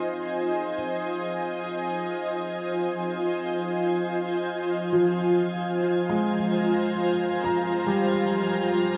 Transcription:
Already playing: F3 F4 C5 D#5 G#5 G#6
4.93 F3
5.10 A#5
5.85 F5
6.09 G#3
7.44 A#5
7.87 G3

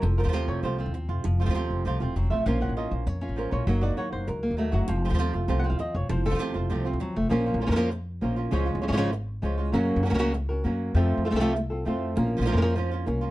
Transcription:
0.02 F1 F3 A4, muted nylon-string guitar stroke
0.18 F3 A3 C4 F4 A#4
0.24 D#2 F3 A3 C4 F4
0.28 F3 A3 C4 F4
0.33 C3 F3 A3 C4 F4 C5
0.48 F1 C#5
0.63 C2 C3 F3 A3 C4 F4 C5
0.78 A3 C4 F4
0.86 D#2
0.94 muted nylon-string guitar stroke
1.09 F1 A3 C4 F4
1.24 F1 F3, muted nylon-string guitar stroke
1.40 F3 A3 C4 F4
1.45 D#2 F3 A3 C4 F4
1.50 F3 A3 C4 F4
1.54 C3 F3 A3 C4 F4
1.71 F1
1.85 C2 C3 F3 A3 C4 F4
2.00 D#1 A3 C4 F4
2.16 F1 F#3, muted nylon-string guitar stroke
2.30 A1 A3 C4 F4 E5
2.46 A#1 F3 A#3 C#4 F4 A#4 F5
2.61 A#3 C#4 F4 F#5
2.69 A1
2.77 A#3 C#4 F4 D#5
2.91 A#1 C5
3.06 F2 C#5, muted nylon-string guitar stroke
3.21 C#4 F4
3.29 A1
3.36 F3 A#3 C#4 F4 A#4
3.51 A#1 A#3 C#4 F4 C#5
3.67 F#1 F#3 A#3 D#4 F#4 D#5
3.81 A#3 D#4 F#4 D5
3.90 D#2
3.97 A#3 D#4 F#4 C#5
4.13 F#1 C5
4.27 C#2 A#4, muted nylon-string guitar stroke
4.43 A#3
4.51 D#2
4.57 F#3 A3 A#3 D#4 F#4
4.72 F#1 F#3 A#3 D#4 F#4
4.88 F1 F3 C4 F4, muted nylon-string guitar stroke
5.05 F3 A3 C4 F4
5.09 D#2 F3 A3 C4 F4
5.14 F3 A3 C4 F4
5.18 C3 F3 A3 C4 F4
5.33 F1 A3 C4 F4
5.48 C2 C3 F3 A3 C4 F4
5.59 F#5
5.64 A3 C4 F4
5.70 D#2 F5
5.79 D#5, muted nylon-string guitar stroke
5.95 F1 C#5
6.09 F1 F3 C5, muted nylon-string guitar stroke
6.26 F3 A3 C4 F4 A4
6.30 D#2 F3 A3 C4 F4
6.34 F3 A3 C4 F4
6.39 C3 F3 A3 C4 F4
6.54 F1 A3 C4 F4 C5
6.70 C2 C3 F3 A3 C4 F4
6.85 A3 C4 F4
6.93 D#2
7.00 F#3, muted nylon-string guitar stroke
7.16 F1 A3
7.30 A#1 F3 A#3 C#4 F4 A#4
7.46 A#3 C#4 F4
7.54 A#1
7.60 A#3 C#4 F4 A#4
7.67 F2 F3 A#3 C#4 F4 A#4
7.72 F3 A#3 C#4 F4 A#4
7.76 F3 A#3 C#4 F4 A#4
7.91 muted nylon-string guitar stroke
8.21 A#1 F3 A#3 C#4 F4 A#4
8.36 A#3 C#4 F4
8.51 C#2 C#3 F3 G#3 C#4 F4 C#5
8.66 G#3 C#4 F4
8.75 C#2
8.82 F3 G#3 C#4 F4 C#5
8.88 G#1 F3 G#3 C#4 F4 C#5
8.93 F3 G#3 C#4 F4 C#5
8.97 C#3 F3 G#3 C#4 F4 C#5
9.12 muted nylon-string guitar stroke
9.42 C#2 F3 G#3 C#4 F4 C#5
9.58 G#3 C#4 F4
9.73 F#2 C#3 F#3 A#3 C#4 F#4 A#4
9.96 F#2
10.03 F#3 A#3 C#4 F#4 A#4
10.10 C#2 F#3 A#3 C#4 F#4 A#4
10.14 F#3 A#3 C#4 F#4 A#4
10.19 C#3 F#3 A#3 C#4 F#4 A#4
10.34 muted nylon-string guitar stroke
10.49 C#4 F#4 A#4
10.64 F#2 F#3 A#3 C#4 F#4 A#4
10.95 F2 C3 F3 A3 C4 F4 A4
11.18 F2
11.25 A3 C4 F4 A4
11.31 C2 F3 A3 C4 F4 A4
11.36 F3 A3 C4 F4 A4
11.40 C3 F3 A3 C4 F4 A4
11.56 muted nylon-string guitar stroke
11.70 C4 F4 A4
11.85 F2 F3 A3 C4 F4 A4
12.16 A#1 F3 A#3 C#4 F4 A#4, muted nylon-string guitar stroke
12.37 A#1 F3 A#3 C#4 F4
12.41 F3 A#3 C#4 F4
12.45 F3 A#3 C#4 F4 A#4
12.52 F2 A#3 C#4 F4 A#4
12.57 A#3 C#4 F4 A#4
12.61 F3 A#3 C#4 F4 A#4
12.76 F3 A#3 C#4 F4, muted nylon-string guitar stroke
12.91 A#3 C#4 F4
13.06 C2 A#3 C#4 F4 A#4, muted nylon-string guitar stroke
13.21 A#3 C#4 F4

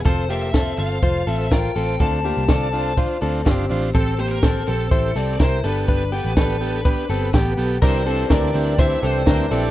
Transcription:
0.04 F1 C4 F4 A4 C5, kick, closed hi-hat
0.29 A#3 F4 G4 A4 C5 E5, open hi-hat
0.53 C4 F4 A4 C5, kick, snare, closed hi-hat
0.78 G1 F4 A4 C5 F5, open hi-hat
1.02 F1 F4 A4 C5, kick, closed hi-hat
1.27 A1 C4 F4 A4 C5 E5, open hi-hat
1.51 F4 A4 A#4 C5 G5, kick, snare, closed hi-hat
1.75 A1 C4 F4 A4 C5, open hi-hat
2.00 D2 C4 D4 F4 A4 C5 A5, kick, closed hi-hat
2.24 A#3 D4 F4 G4 C5, open hi-hat
2.37 C2
2.48 C4 D4 F4 A4 D5, kick, snare, closed hi-hat
2.72 D4 F4 C5, open hi-hat
2.97 D4 F4 C5, kick, closed hi-hat
3.21 D2 C4 D4 F4 A4 C5, open hi-hat
3.45 G1 C4 D4 F4 G4 C5, kick, snare, closed hi-hat
3.69 A1 D4 F4 C5, open hi-hat
3.94 A1 C4 G4 A4, kick, closed hi-hat
4.19 A#3 C4 G4 C5, open hi-hat
4.31 A#4
4.43 C4 G4 A4, kick, snare, closed hi-hat
4.67 A#1 C4 G4 A4, open hi-hat
4.91 A1 C4 E4 G4 A4 C5, kick, closed hi-hat
5.15 C2 C4 G4 A4 D5, open hi-hat
5.34 D5
5.39 C2 C4 E4 G4 A#4 C5, kick, snare, closed hi-hat
5.63 G1 B3 D4 G4 A4 B4, open hi-hat
5.88 G1 D4 B4, kick, closed hi-hat
6.12 B3 G4 A4, open hi-hat
6.25 A1
6.36 B3 D4 G4 A4 B4, kick, snare, closed hi-hat
6.60 B3 G4 A4, open hi-hat
6.85 B3 D4 G4 B4, kick, closed hi-hat
7.09 G1 B3 C4 G4 A4, open hi-hat
7.33 A1 B3 G4 A4, kick, snare, closed hi-hat
7.57 B1 B3 G4 A4, open hi-hat
7.82 C2 E3 G3 C4 D4 E4 G4 A#4 C5, kick, crash
8.05 C4 D4 E4 A4, open hi-hat
8.30 D2 C4 D4 E4 A4 A#4 D5, kick, snare, hi-hat pedal, ride
8.54 D2 C4 D4 E4 G4, open hi-hat
8.78 C4 D4 E4 G4 C5 E5, kick, hi-hat pedal, ride
9.01 C2 C4 D4 E4 G4 A4 C5, open hi-hat
9.26 D2 C4 D4 E4 G4 A#4, kick, snare, hi-hat pedal, ride
9.50 A#1 C4 D4 E4 G4 A4 D5, open hi-hat

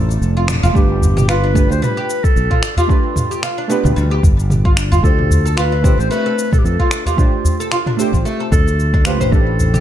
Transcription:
Already playing: A1 A3 C4 D4 F4 A4
0.11 cabasa
0.22 F1, cabasa
0.37 F4
0.48 D4, finger snap, mid tom, cabasa
0.63 F1 F4, udu, cabasa
0.73 G1 A3 D4 G4 B4, kick, cabasa
1.02 udu, cabasa
1.17 G4, mid tom, cabasa
1.29 F4 B4, finger snap, cabasa
1.44 D4
1.53 A3 B3 D4 G4, kick, cabasa
1.57 B4
1.71 D2 C5, cabasa
1.82 G3 B4, mid tom, cabasa
1.97 G4
2.10 cabasa
2.24 A4, kick, cabasa
2.36 B1, cabasa
2.51 F4, kick, mid tom
2.62 D4, finger snap, cabasa
2.77 F4 G4, udu, cabasa
2.87 A3 D4 F4 G4, kick, cabasa
2.91 B4
3.16 mid tom, udu, cabasa
3.31 G4, cabasa
3.43 F4, finger snap, cabasa
3.58 D4
3.67 A3 B3 D4 G4, cabasa
3.72 B4
3.85 D2, mid tom, cabasa
3.96 D2 G3, cabasa
4.11 G4
4.23 G1, kick, udu, cabasa
4.40 cabasa
4.50 mid tom, cabasa
4.65 F4, kick
4.77 D4, finger snap, cabasa
4.92 F4, udu, cabasa
5.02 D2 A3 D4 G4 A4, kick, cabasa
5.06 C5
5.19 mid tom
5.31 udu, cabasa
5.45 A4, cabasa
5.57 F4 B4, finger snap, cabasa
5.72 D4
5.82 A3 C4 D4 G4, kick, mid tom, cabasa
5.99 A1 C5, cabasa
6.10 A3 B4, cabasa
6.26 A4
6.39 cabasa
6.53 A4, kick, mid tom, cabasa
6.58 G4
6.64 F2 A4, cabasa
6.80 F4, kick
6.91 D4, finger snap, cabasa
7.06 F4 G4, udu, cabasa
7.16 A3 D4 F4 G4 C5, kick, mid tom, cabasa
7.44 udu, cabasa
7.60 A4, cabasa
7.72 F4, finger snap, cabasa
7.86 D4, mid tom
7.96 A3 C4 D4 G4 C5, cabasa
8.13 A1, kick, cabasa
8.25 A3, cabasa
8.40 A4
8.52 D2 D4 A4, kick, mid tom, udu, cabasa
8.68 cabasa
8.80 cabasa
8.94 D4, kick
9.05 A3 D4 F4 G4 B4 C5, finger snap, cabasa
9.20 A1 C5, mid tom, udu, cabasa
9.26 B4
9.30 A1 A3 D4 G4 A4 B4, kick, cabasa
9.59 udu, cabasa
9.74 G4, mid tom, cabasa

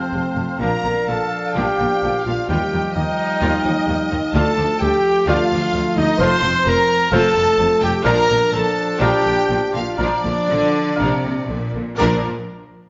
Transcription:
Already playing: F3 A3 C4 C5 F5 A5
0.13 F1 F2 C3
0.36 F1 F2 C3 F3
0.59 A#1 A#2 F3 D4 A#4 D5 F5 A#5
0.83 A#1 A#2 D3 A#3
1.07 A#1 A#2 D3 F3 A4 A5
1.53 A#1 F3 D4 G4 G5
1.57 A#2 G5
1.79 A#1 A#2 D3 A#3
2.02 A#1 A#2 D3 F3
2.23 A#1 D3 A#3 F4 F5
2.27 A#2
2.48 D#2 G3 F4 G4 D#5 F5 G5
2.72 D#2 F3 D#4
2.94 D#2 D#3 A#3 D#4 D#5 F5 G5
3.40 D#2 G3 F4
3.64 D#2 F3 D#4
3.87 D#2 D#3 A#3
4.10 D#2 F3 D#4
4.33 D2 F3 A3 F4 A4 D5 F5 A5
4.56 D2 F3 D4
4.80 D2 D3 A3 G4 G5
5.26 D2 F3 A3 F4 D5 F5 A5
5.51 D2 F3 D4
5.73 D2 D3 A3
5.95 D2 F3 D4 D#4 D#5
6.18 F1 F2 F3 A3 C4 F4 C5 F5 A5 C6
6.42 F1 F2 F3 C4
6.65 F1 F2 C3 A3 A#4 A#5
7.11 F1 F2 F3 A3 F4 A4 C5 F5 A5
7.36 F1 F2 F3 C4
7.58 F1 F2 C3 A3
7.81 F1 F2 F3 C4 G4 G5
8.04 A#1 A#2 F3 D4 A#4 D5 F5 A#5
8.28 A#1 A#2 D3 A#3
8.52 A#1 A#2 D3 F3 A4 A5
8.99 A#1 A#2 F3 D4 G4 D5 F5 G5 A#5
9.24 A#1 A#2 D3 A#3
9.49 A#1 A#2 D3 F3
9.72 A#1 A#2 D3 A#3 F4 F5
9.97 A#1 A#2 F3 D4 D5 F5 A#5
10.24 A#1 A#2 D3 A#3
10.49 A#1 D3 F3
10.96 A#1 C3 D5 F5 A#5
11.00 F3 D4
11.23 A#1 D3 A#3
11.49 A#1 A#2 D3 F3
11.73 A#1 D3 A#3
11.97 A#1 A#2 F3 D4 A#4 D5 A#5

